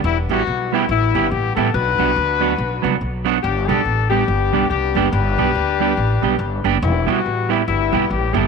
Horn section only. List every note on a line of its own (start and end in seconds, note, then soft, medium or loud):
0.05 0.86 G3 medium
0.05 0.30 B3 medium
0.05 0.17 E4 loud
0.31 0.89 B3 medium
0.31 0.70 F#4 loud
0.73 0.89 E4 medium
0.90 1.70 G3 medium
0.90 1.70 B3 medium
0.90 1.29 E4 loud
1.31 1.56 G4 loud
1.55 1.72 A4 loud
1.74 2.97 D4 medium
1.74 2.97 F#4 medium
1.74 3.01 B4 loud
3.42 4.09 B3 medium
3.42 3.67 D4 medium
3.42 3.66 G4 loud
3.67 4.09 D4 medium
3.67 4.10 A4 loud
4.10 4.70 B3 medium
4.10 4.70 D4 medium
4.10 4.66 G4 medium
4.70 5.52 B3 medium
4.70 5.12 D4 medium
4.70 5.10 G4 loud
5.13 6.61 D4 medium
5.13 6.62 G4 medium
5.13 6.65 B4 loud
6.82 7.63 G3 medium
6.82 7.07 B3 medium
6.82 7.06 E4 loud
7.08 7.66 B3 medium
7.08 7.50 F#4 loud
7.50 7.66 E4 medium
7.67 8.47 G3 medium
7.67 8.47 B3 medium
7.67 8.07 E4 loud
8.09 8.35 G4 loud
8.34 8.47 A4 medium